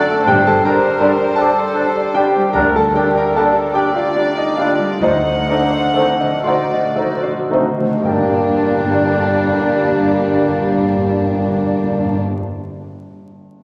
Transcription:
Already playing: F#2 A3 D4 F#4 G4 A4 D5 F#5 G5 A5 D6
0.12 A3
0.25 G1 G2 G3 D4 G4 C5 G5
0.29 G2 G4 D5
0.47 G3 A4 A5
0.62 G3 D4 A#4 D5 G5 A#5
0.85 D5
0.99 D3 G3 D4 D5
1.03 G4
1.20 D5
1.36 G3 D4 A4 D5 A5
1.41 D6
1.59 D5
1.73 G3 D4 G4 D5
1.96 D5
2.13 D3 G3 D4 G4 D5 G5
2.36 G3
2.53 D2 D3 G3 D4 A#4 D5 A#5
2.74 G3 A4 A5
2.94 G3 D4 G4 D5 G5
3.14 A#4 D5 A#5
3.18 A#4
3.33 D3 G3 A#3 D4 G4 A4 D5 A5
3.38 A4
3.51 D5
3.73 G3 D4 G4 D5 G5 D6
3.95 F4 D5 F5
4.13 G3 D4 G4 D5
4.34 D#4 D5 D#5
4.57 D3 G3 A#3 D4 F4 D5 F5
4.79 G3
5.00 D2 D3 A3 D#4 C5 D#5 F#5
5.24 A3
5.39 D3
5.47 D3 A3 D4 D#4 A4 C5 D5
5.51 D4
5.57 D3
5.66 D3
5.71 C5
5.86 D3
5.93 D3 D#3 A3 C4 D4 A4 C5
5.98 D#4
6.14 D3
6.20 D3 D#5
6.34 D3
6.43 D3 A3 D#4 F#4 C5 D5 F#5 C6
6.48 F#4 D#5
6.55 D3
6.64 D3
6.73 D3 D#5
6.85 D3
6.96 D3 A3 D#4 A4 C5
7.07 D3
7.16 D3
7.23 C5
7.28 D3
7.38 D3
7.49 D3 D#3 A3 C4 D4 D#4 C5
7.60 D3
7.70 D3
7.78 D3 A3
7.91 D3
8.01 G1 G2 D3 G3 A#3 D4 G4 D5
8.05 G3 A#4 G5
8.10 G2
8.17 G2 A#3
8.22 G2 D4
8.30 G2 D5
8.41 G2
8.48 G2
8.55 G2
8.62 G2
8.70 G2
8.77 G2
8.84 G2
8.92 G2
8.98 G2
9.05 G2
9.12 G2
9.19 G2
9.26 G2
9.33 G2
9.41 G2
9.48 G2
9.54 G2
9.62 G2
9.69 G2
9.76 G2
9.83 G2
9.91 G2
9.97 G2
10.04 G2
10.12 G2
10.18 G2
10.25 G2
10.33 G2
10.40 G2
10.48 G2
10.56 G2
10.63 G2
10.70 G2
10.77 G2
10.84 G2
10.91 G2
10.98 G2
11.06 G2
11.13 G2
11.19 G2
11.26 G2
11.33 G2
11.40 G2
11.48 G2
11.55 G2
11.62 G2
11.69 G2
11.76 G2
11.83 G2
11.90 G2
11.98 G2
12.05 G2
12.13 G2

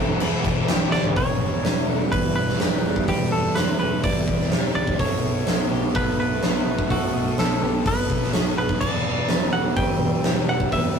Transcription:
Already playing: E1 E2 E3 G3 B3 D4 E4 G4 A4 B4 E5
0.00 B2
0.20 E1 B4, crash
0.44 E1 E3 G3 B3 D4 E4, kick, crash
0.67 B1 E2 B2 E3 G3 B3 D4 E4 G4, snare, crash
0.92 D2 B2 E3 G3 D4 E4 D5, snare
1.04 floor tom
1.15 E1 E2 B2 E3 G3 D4 G4 B4 C#5 E5, kick, open hi-hat
1.19 E4
1.39 E1 B2 E3
1.63 E1 E2 B2 E3 B4, snare, open hi-hat
1.87 E1 B2 E3 A4
2.11 E1 E2 B2 E3 B4, kick, open hi-hat
2.35 E1 B2 E3 B4
2.48 snare
2.59 E1 E2 B2 E3 G4, snare, open hi-hat
2.83 E1 B2 E3
2.96 kick
3.08 E1 E2 B2 E3 G4 B4, kick, open hi-hat
3.31 E1 B2 E3 A4
3.55 E1 E2 B2 E3 B4, snare, open hi-hat
3.78 E1 B2 E3 A4 B4
4.03 E1 E2 B2 E3 B4 D5, kick, open hi-hat
4.26 E1 B2 E3, kick
4.40 snare
4.50 E1 E2 B2 E3 G4, snare, open hi-hat
4.74 C#2 B2 E3 D5
4.87 kick
4.98 B1 B2 D#3 F#3 A3 B3 F#4 A4 B4 C#5 A5 D#6, kick, open hi-hat
5.22 B1 F#3 B3
5.45 B1 B2 F#3 A4, snare, open hi-hat
5.50 B3
5.71 B1 F#3 B3 G4
5.94 B1 B2 F#3 B3 A4 B4, kick, open hi-hat
6.18 B1 F#3 B3 B4
6.43 B1 B2 F#3 B3 F#4, snare, open hi-hat
6.65 B1 F#3 B3
6.79 kick
6.89 B1 B2 F#3 B3 F#4 A4, kick, open hi-hat
7.14 B1 F#3 B3
7.36 B1 B2 F#3 B3 A4, snare, open hi-hat
7.60 B1 F#3 B3 G4
7.84 B1 B2 F#3 B3 A4 B4, kick, open hi-hat
8.09 B1 F#3 B3, kick
8.22 snare
8.33 B1 B2 F#3 B3 F#4, snare, open hi-hat
8.58 B1 F#3 B3 B4
8.69 kick
8.80 E1 E2 B2 E3 G3 D4 E4 B4 D5 G5 E6, kick, crash
9.04 E1 B2 E3
9.28 E1 E2 B2 E3 B4, snare, open hi-hat
9.51 E1 B2 E3 A4 F#5
9.75 E1 E2 B2 E3 B4 G5, kick, open hi-hat
10.00 E1 B2 E3
10.23 E1 E2 B2 E3 G4, snare, open hi-hat
10.47 E1 E3 F#5
10.52 B2
10.60 kick
10.71 E1 E2 B2 E3 B4 E5, kick, open hi-hat
10.94 E1 E3

